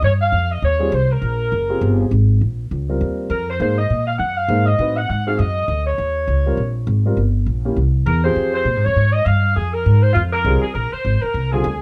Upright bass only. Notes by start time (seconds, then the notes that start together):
0.02 G2
0.32 F2
0.62 D#2
0.92 C2
1.22 A#1
1.52 F#1
1.81 G1
2.11 G#1
2.41 A#1
2.71 C#2
3.01 D#2
3.30 F2
3.60 G#2
3.90 A#2
4.19 F#2
4.48 G#2
4.79 A2
5.10 G#2
5.39 F#2
5.68 D2
5.98 D#2
6.28 C#2
6.57 A#1
6.87 G#1
7.17 G1
7.46 A#1
7.76 C2
8.06 E2
8.36 F2
8.65 A#2
8.76 G#2
8.86 F2
8.96 G#2
9.26 G2
9.56 F2
9.86 G#2
10.15 F2
10.45 C2
10.62 muted upright bass stroke
10.75 A#1
10.92 muted upright bass stroke
11.05 G#1
11.23 muted upright bass stroke
11.34 C2
11.64 D2